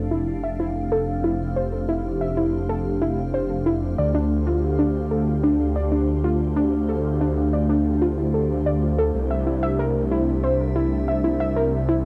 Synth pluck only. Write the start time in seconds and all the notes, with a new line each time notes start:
0.11 E4
0.44 E5
0.60 E4
0.92 A4
1.24 E4
1.56 C5
1.89 E4
2.21 E5
2.37 E4
2.69 A4
3.02 E4
3.34 C5
3.66 E4
3.98 D5
4.15 D4
4.47 F4
4.79 D4
5.11 A4
5.43 D4
5.76 D5
5.92 D4
6.24 F4
6.56 D4
6.89 A4
7.21 D4
7.53 D5
7.69 D4
8.02 F4
8.18 E4
8.34 A4
8.66 D5
8.98 A4
9.31 E5
9.47 E4
9.63 E5
9.79 A#4
10.11 E4
10.44 C5
10.76 E4
11.08 E5
11.24 E4
11.40 E5
11.56 A#4
11.89 E4